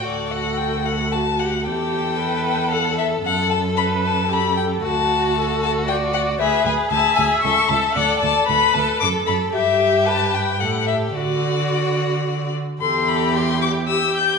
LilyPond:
<<
  \new Staff \with { instrumentName = "Violin" } { \time 3/4 \key d \major \tempo 4 = 113 d''8 fis''8 g''8 fis''8 a''8 fis''8 | g''4. g''8 fis''8 e''8 | fis''8 a''8 b''8 a''8 b''8 g''8 | a''4. a''8 g''8 fis''8 |
e''8 gis''8 a''8 gis''8 cis'''8 a''8 | fis''8 a''8 b''8 a''8 d'''8 b''8 | e''4 a''8 g''8 fis''8 e''8 | d''2~ d''8 r8 |
\key e \minor c'''8 b''8 c'''8 d'''8 e'''8 g'''8 | }
  \new Staff \with { instrumentName = "Viola" } { \time 3/4 \key d \major a'2 fis'4 | g'4 b'4 a'4~ | a'4 b'4 a'4 | fis'4 a'4 d''4 |
b'4 e''2 | d''4 b'4 a'4 | g'4 b'4 a'4 | fis'2~ fis'8 r8 |
\key e \minor a'4 g'2 | }
  \new Staff \with { instrumentName = "Violin" } { \time 3/4 \key d \major fis'2 fis'8 g'8 | a'2. | a'2 g'4 | fis'2. |
gis'8 gis'8 gis'8 gis'8 a'8 a'8 | a'8 a'8 a'8 a'8 a'8 a'8 | g'2 g'4 | fis'2~ fis'8 r8 |
\key e \minor g'2 g'4 | }
  \new Staff \with { instrumentName = "Cello" } { \clef bass \time 3/4 \key d \major d,2. | e,2. | fis,2. | d,2. |
d,8 d,8 d,8 d,8 cis,8 cis,8 | d,8 d,8 d,8 d,8 fis,8 fis,8 | g,2 a,4 | d2~ d8 r8 |
\key e \minor e,2. | }
>>